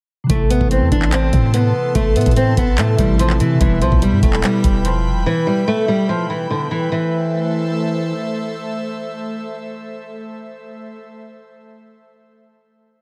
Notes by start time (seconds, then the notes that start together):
0.24 C3 E3
0.30 A1 A3 E4 A4 A5 C6, kick, closed hi-hat
0.35 E4
0.50 B3, closed hi-hat
0.61 A1, kick
0.71 C4, closed hi-hat
0.82 E2
0.92 A1 D4, kick, closed hi-hat
1.02 clap
1.12 C4, clap, closed hi-hat
1.33 A2, kick, closed hi-hat
1.54 B3, closed hi-hat
1.95 A1 A3, kick, closed hi-hat
2.16 A2 B3, closed hi-hat
2.21 closed hi-hat
2.26 A2, kick, closed hi-hat
2.31 closed hi-hat
2.36 C4, closed hi-hat
2.57 A1 B3, kick, closed hi-hat
2.78 A2 A3, clap, closed hi-hat
2.96 A1 C3 E3 G3 A3, kick, closed hi-hat
3.00 C4 E4
3.19 F3, closed hi-hat
3.30 clap
3.40 C3 E3, closed hi-hat
3.55 B2
3.60 E1 E3 G3 B3 B4 G5 B5, kick, closed hi-hat
3.66 E4
3.81 B1 F3, closed hi-hat
3.92 B1, kick
4.02 G3, closed hi-hat
4.12 G2
4.23 E1 A3, kick, closed hi-hat
4.33 clap
4.44 G3, clap, closed hi-hat
4.64 E1, kick, closed hi-hat
4.85 F3, closed hi-hat
5.06 F1
5.16 E1
5.26 E3
5.47 G3
5.68 A3
5.88 G3
6.09 F3
6.30 E3
6.50 D3
6.71 E3
6.92 E3 A3 A4 C5 E5